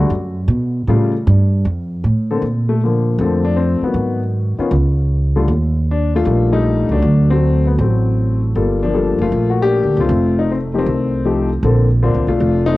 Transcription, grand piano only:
0.88 C#3 G3 A3 F4
2.31 D3 A#3 C4 A4
2.69 A3
2.83 D3 F3 A#3
3.20 D3 F3 A3 A#3 C4 A4
3.45 D4
3.56 C4
3.84 D#3 F#3 B3
4.59 D#3 B3 C#4 F4
5.36 D3 G3 A3 F4
5.91 D4
6.14 A3 D4 F4
6.26 D#3 G3 A3 F4
6.52 G3 A3 D#4
6.92 F#3 A3 D4
7.30 F#3 A3 C4
7.67 B3
7.81 F#3 A3 C4
8.56 G3 A#3 F4 A4
8.83 F3 A#3 D4
8.94 G3 A#3 F4 A4
9.21 A3 A#3 F4
9.50 F#4
9.62 A#3 D4 G4
10.00 A3 C4 F4
10.39 D#4
10.51 C4
10.74 D#3 F3 A3 D#4 G4
10.78 A3 C4
11.25 F3 A3 D#4 G4
11.64 D3 A#3 C4 A4
12.03 D3 A#3 C4 D4 F4
12.28 A3 D4 F4
12.66 A3 C4 D#4

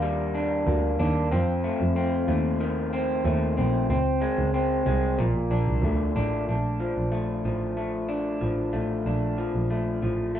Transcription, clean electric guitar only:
Already playing: D#3 A#3 D4
0.02 G3
0.34 D4
0.67 A#3
0.99 D4
1.31 F2 C4
1.64 A3
1.96 C4
2.28 A3
2.60 D#3
2.93 C4
3.25 A3
3.57 C4
3.90 C4
4.22 G#3
4.54 C4
4.86 G#3
5.19 A#2
5.51 D4
5.83 A3
6.16 D4
6.49 D4
6.80 F3
7.12 A3
7.45 F3
7.77 A3
8.09 D4
8.41 F3
8.73 A3
9.06 D4
9.38 F3
9.70 A3
10.02 F3
10.35 A3

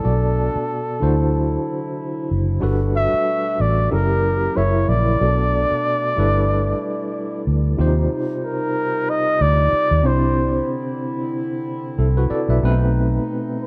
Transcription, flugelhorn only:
Already playing: A4
2.96 E5
3.61 D5
3.92 A#4
4.57 C#5
4.89 D5
8.44 A#4
9.10 D#5
9.42 D5
10.07 C5
13.62 B4

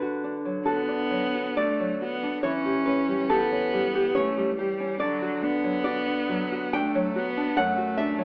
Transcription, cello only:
0.67 B3
1.58 A3
2.02 B3
2.45 C#4
3.30 B3
4.17 A3
4.58 G3
5.01 F#3
5.44 B3
6.76 A3
7.18 B3
7.58 A3

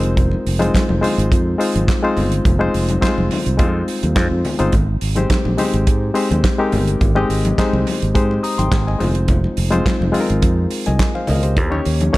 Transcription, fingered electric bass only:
Already playing: F1
0.47 F1
0.90 F1
1.18 G#1
1.32 F2
1.75 G#1
2.17 G1
2.45 F1
2.75 F1
3.18 F1
3.47 C2
3.59 F2
4.03 D#2
4.16 F2
4.31 F2
4.60 G1
4.74 G#1
5.02 G#1
5.46 A#1
5.74 G#1
5.88 G#2
6.31 D#2
6.73 G1
7.01 G#1
7.29 G#1
7.73 C2
8.03 G#1
8.16 G#2
8.59 G#1
8.72 G#1
9.00 F1
9.58 F1
10.01 F1
10.30 G#1
10.43 F2
10.88 C2
11.29 C#2
11.57 D#2
11.86 D#2
12.15 D#3

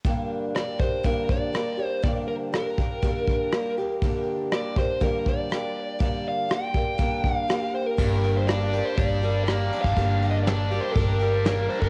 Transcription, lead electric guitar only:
0.55 D5
0.80 C5
1.05 A#4
1.29 D5
1.86 C5
2.04 D5
2.28 A#4
2.55 A#4
4.52 D5
4.79 C5
5.03 A#4
5.28 D5
6.04 D5
6.29 F5
6.54 G5
7.35 F5
7.75 C5
7.86 A#4
8.37 C5
8.47 D5
8.85 C5
8.96 D5
9.44 D5
9.82 F5
10.31 D#5
10.43 D5
10.81 C5
10.93 A#4
11.69 C5
11.81 A#4

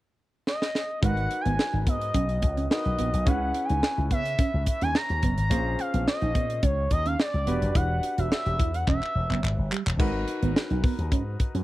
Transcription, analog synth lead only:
0.47 D#5
1.03 F#5
1.41 G#5
1.88 D#5
2.71 D#5
3.27 F#5
3.65 G#5
4.11 E5
4.68 E5
4.82 G#5
4.96 A#5
5.38 A#5
5.80 F5
6.07 D#5
6.63 C#5
6.92 D#5
7.06 F5
7.20 D5
7.75 F#5
8.19 E5
8.31 E5
8.75 F#5
8.88 E5

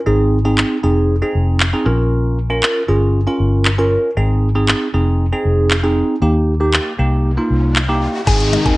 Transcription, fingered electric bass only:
0.07 G#1
0.84 F1
1.35 F1
1.86 A#1
2.89 G1
3.40 G1
4.17 G#1
4.94 F1
5.45 F1
6.22 D#2
6.99 C2
7.50 C2
8.27 G#1
8.66 D#2

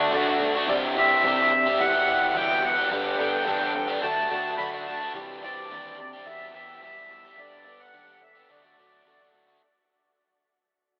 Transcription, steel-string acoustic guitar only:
Already playing: D4 F#4
0.10 D3 A3 D4 F#4
0.39 A3 D4 F#4
0.66 C3 E3 G3 D4 G4
0.95 G3 D4 G4
1.23 C3 E3 G3 D4 G4
1.51 G3 D4 G4
1.78 E3 G3 E4 G4
2.07 E3 G3 E4 G4
2.34 E2 B2 E3 G3 E4 G4
2.62 E3 G3 E4 G4
2.90 G3 B3 D4 A4
3.17 B3 D4 A4
3.44 G3 B3 D4 A4
3.73 B3 D4 A4
4.00 F#3 A3 D4 F#4
4.30 A3 D4 F#4
4.58 D3 F#3 A3 D4 F#4
4.87 A3 D4 F#4
5.14 C3 E3 G3 D4 G4
5.42 G3 D4 G4
5.71 C3 E3 G3 D4 G4
5.98 G3 D4 G4
6.26 E3 G3 E4 G4
6.53 E3 G3 E4 G4
6.81 E2 B2 E3 G3 E4 G4
7.09 E3 G3 E4 G4
7.37 G3 B3 D4 A4
7.65 B3 D4 A4
7.93 G3 B3 D4 A4
8.20 B3 D4 A4
8.48 D3 D4 F#4 A4
8.77 D4 F#4 A4
9.05 D3 D4 F#4 A4
9.32 D4 F#4 A4

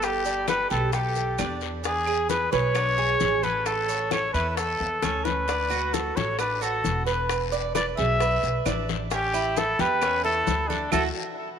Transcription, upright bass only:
Already playing: G1
0.71 B1
1.39 E2
2.53 B1
3.21 A1
4.34 E2
4.80 E2
5.03 D2
6.17 A1
6.85 E1
7.98 B1
8.43 B1
8.66 A1
9.79 E2
10.48 D2
10.93 D2

